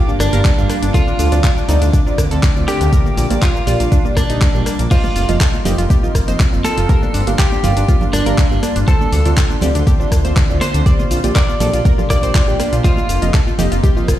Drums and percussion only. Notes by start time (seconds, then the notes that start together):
0.09 cabasa
0.20 cross-stick, open hi-hat, cabasa
0.33 closed hi-hat, cabasa
0.45 kick, clap, closed hi-hat, cabasa
0.58 cabasa
0.70 cross-stick, open hi-hat, cabasa
0.83 closed hi-hat, cabasa
0.94 kick, closed hi-hat, cabasa
1.08 cabasa
1.19 open hi-hat, cabasa
1.32 closed hi-hat, cabasa
1.44 kick, clap, closed hi-hat, cabasa
1.57 cabasa
1.69 open hi-hat, cabasa
1.82 closed hi-hat, cabasa
1.93 kick, closed hi-hat, cabasa
2.07 cabasa
2.18 kick, cross-stick, open hi-hat, cabasa
2.31 closed hi-hat, cabasa
2.43 kick, clap, closed hi-hat, cabasa
2.57 cabasa
2.68 cross-stick, open hi-hat, cabasa
2.81 closed hi-hat, cabasa
2.93 kick, closed hi-hat, cabasa
3.06 cabasa
3.17 open hi-hat, cabasa
3.31 closed hi-hat, cabasa
3.42 kick, clap, closed hi-hat, cabasa
3.56 cabasa
3.67 open hi-hat, cabasa
3.80 closed hi-hat, cabasa
3.92 kick, closed hi-hat, cabasa
4.06 cabasa
4.17 kick, cross-stick, open hi-hat, cabasa
4.30 closed hi-hat, cabasa
4.41 kick, clap, closed hi-hat, cabasa
4.55 cabasa
4.66 cross-stick, open hi-hat, cabasa
4.79 closed hi-hat, cabasa
4.91 kick, closed hi-hat, crash, cabasa
5.04 high conga, cabasa
5.16 open hi-hat, cabasa
5.29 closed hi-hat, cabasa
5.41 kick, clap, closed hi-hat, cabasa
5.54 high conga, cabasa
5.65 open hi-hat, low conga, cabasa
5.78 closed hi-hat, cabasa
5.90 kick, closed hi-hat, high conga, cabasa
6.04 cabasa
6.15 kick, cross-stick, open hi-hat, cabasa
6.28 closed hi-hat, high conga, cabasa
6.40 kick, clap, closed hi-hat, cabasa
6.53 cabasa
6.64 cross-stick, open hi-hat, high conga, cabasa
6.78 closed hi-hat, cabasa
6.89 kick, closed hi-hat, cabasa
7.03 high conga, cabasa
7.14 open hi-hat, cabasa
7.27 closed hi-hat, cabasa
7.39 kick, clap, closed hi-hat, cabasa
7.52 high conga, cabasa
7.63 open hi-hat, low conga, cabasa
7.77 closed hi-hat, cabasa
7.88 kick, closed hi-hat, high conga, cabasa
8.01 low conga, cabasa
8.13 cross-stick, open hi-hat, cabasa
8.26 closed hi-hat, high conga, cabasa
8.38 kick, clap, closed hi-hat, cabasa
8.52 cabasa
8.63 cross-stick, open hi-hat, high conga, cabasa
8.76 closed hi-hat, cabasa
8.88 kick, closed hi-hat, cabasa
9.01 high conga, cabasa
9.12 open hi-hat, cabasa
9.25 closed hi-hat, cabasa
9.37 kick, clap, closed hi-hat, cabasa
9.50 high conga, cabasa
9.61 open hi-hat, low conga, cabasa
9.75 closed hi-hat, cabasa
9.87 kick, closed hi-hat, high conga, cabasa
10.01 cabasa
10.12 kick, cross-stick, open hi-hat, cabasa
10.25 closed hi-hat, high conga, cabasa
10.36 kick, clap, closed hi-hat, cabasa
10.50 cabasa
10.61 cross-stick, open hi-hat, high conga, cabasa
10.74 closed hi-hat, cabasa
10.86 kick, closed hi-hat, cabasa
11.00 high conga, cabasa
11.11 open hi-hat, cabasa
11.24 closed hi-hat, cabasa
11.36 kick, clap, closed hi-hat, cabasa
11.49 high conga, cabasa
11.60 open hi-hat, low conga, cabasa
11.74 closed hi-hat, cabasa
11.85 kick, closed hi-hat, high conga, cabasa
11.99 low conga, cabasa
12.10 kick, cross-stick, open hi-hat, cabasa
12.22 closed hi-hat, high conga, cabasa
12.35 kick, clap, closed hi-hat, cabasa
12.48 cabasa
12.60 cross-stick, open hi-hat, high conga, cabasa
12.73 closed hi-hat, cabasa
12.84 kick, closed hi-hat, cabasa
12.97 high conga, cabasa
13.09 open hi-hat, cabasa
13.22 closed hi-hat, cabasa
13.34 kick, clap, closed hi-hat, cabasa
13.47 high conga, cabasa
13.58 open hi-hat, low conga, cabasa
13.72 closed hi-hat, cabasa
13.83 kick, closed hi-hat, high conga, cabasa
13.97 cabasa
14.08 kick, cross-stick, open hi-hat, cabasa